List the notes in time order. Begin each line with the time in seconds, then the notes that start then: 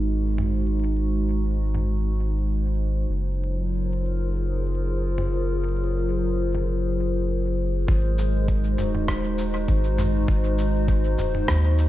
Already playing: G#1 G#3 D#4 F#4 G#4 A#4 C5
0.38 mid tom
1.75 mid tom
3.08 F#1 F#3
3.24 F4
3.60 A#4
4.08 G#4
5.18 mid tom
6.55 mid tom
7.88 G#1 G#3, kick
8.18 cabasa
8.32 D#4
8.36 F#4
8.48 kick
8.78 D#1, mid tom, cabasa
8.95 mid tom
9.08 kick, cross-stick
9.38 cabasa
9.68 G#1, kick
9.98 mid tom, cabasa
10.28 G#1, kick
10.58 cabasa
10.88 kick
11.18 D#1, mid tom, cabasa
11.35 mid tom
11.48 D#2, kick, cross-stick
11.78 cabasa